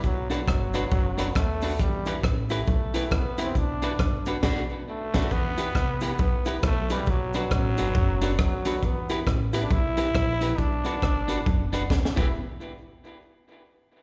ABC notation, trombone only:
X:1
M:4/4
L:1/16
Q:"Swing" 1/4=137
K:Em
V:1 name="Trombone"
F,2 F,8- F,2 A,4 | G,4 z2 A,6 B,2 C2 | D8 z4 A,4 | B,6 B,6 A,2 G,2 |
F,2 F,8- F,2 F,4 | B,4 z2 B, D E8 | D12 z2 E2 | z16 |]